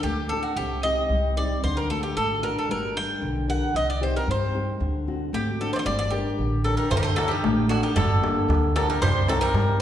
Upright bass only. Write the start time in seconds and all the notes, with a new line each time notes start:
0.03 D2
0.56 C2
1.09 C2
1.63 D2
2.16 G#1
2.69 G1
3.22 B1
3.74 C2
4.28 G2
4.80 D2
5.33 G#1
5.86 G1
6.38 A1
6.91 D2
7.43 A1
7.96 G1
8.48 D2
9.01 C2
9.53 G2